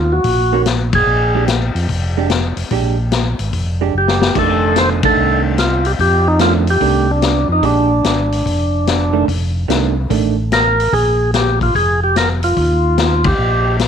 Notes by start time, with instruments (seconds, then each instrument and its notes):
Already playing: tonewheel organ D#2 F4
0.12 tonewheel organ F#4
0.24 tonewheel organ A#1, kick, open hi-hat
0.53 hollow-body jazz guitar D#3 A#3 C#4 F#4
0.66 snare, closed hi-hat
0.93 tonewheel organ G#4, kick, ride
1.06 tonewheel organ A#1
1.35 hollow-body jazz guitar G#3 D4 G4
1.48 snare, closed hi-hat
1.75 tonewheel organ F2, open hi-hat
1.89 tonewheel organ F1, kick, open hi-hat
2.17 hollow-body jazz guitar G#3 D4 G4
2.30 snare, closed hi-hat
2.57 tonewheel organ F1, open hi-hat
2.71 tonewheel organ A#1, hollow-body jazz guitar G#3 D4 G4, kick, open hi-hat
3.12 snare, closed hi-hat
3.39 tonewheel organ G#1, open hi-hat
3.53 tonewheel organ F1, kick, open hi-hat
3.81 hollow-body jazz guitar G#3 D4 G4
3.93 tonewheel organ F#1
3.98 tonewheel organ G4
4.08 snare
4.22 snare
4.35 tonewheel organ F1 A4, hollow-body jazz guitar D#3 A3 D4, kick, crash
4.76 tonewheel organ C5, snare, closed hi-hat
5.03 hollow-body jazz guitar D#3 A3 D4, tonewheel organ A4, kick, ride
5.16 tonewheel organ C2
5.58 tonewheel organ F4, snare, closed hi-hat
5.85 tonewheel organ G4, open hi-hat
5.99 tonewheel organ F2 G4, kick, open hi-hat
6.28 tonewheel organ D#4
6.39 hollow-body jazz guitar D#3 A3 D4, tonewheel organ F4, snare, closed hi-hat
6.67 tonewheel organ G4, open hi-hat
6.80 tonewheel organ C2, hollow-body jazz guitar D#3 A3 D4, kick, open hi-hat
7.11 tonewheel organ D4
7.22 snare, closed hi-hat
7.48 tonewheel organ F2
7.52 tonewheel organ D#4
7.63 tonewheel organ A#1 D4, hollow-body jazz guitar G#3 D4 G4, kick, open hi-hat
8.04 tonewheel organ G#1 D4, snare, closed hi-hat
8.32 open hi-hat
8.45 tonewheel organ F1, kick, open hi-hat
8.87 snare, closed hi-hat
9.13 hollow-body jazz guitar D#3 A3 D4
9.28 tonewheel organ F1, kick, open hi-hat
9.68 tonewheel organ C2, hollow-body jazz guitar D#3 A3 D4, snare, closed hi-hat
10.10 tonewheel organ A1, hollow-body jazz guitar D#3 A3 D4, kick, open hi-hat
10.52 tonewheel organ A#4, snare, closed hi-hat
10.80 open hi-hat
10.93 tonewheel organ A#1 G#4, kick, open hi-hat
11.34 tonewheel organ G4, snare, closed hi-hat
11.61 tonewheel organ F4, kick, open hi-hat
11.75 tonewheel organ F1 G#4, kick, open hi-hat
12.04 tonewheel organ G4
12.16 tonewheel organ A#4, snare, closed hi-hat
12.43 tonewheel organ F4, open hi-hat
12.56 tonewheel organ D#2, kick, open hi-hat
12.98 snare, closed hi-hat
13.24 tonewheel organ G4, kick, ride
13.39 tonewheel organ A#1
13.79 snare, closed hi-hat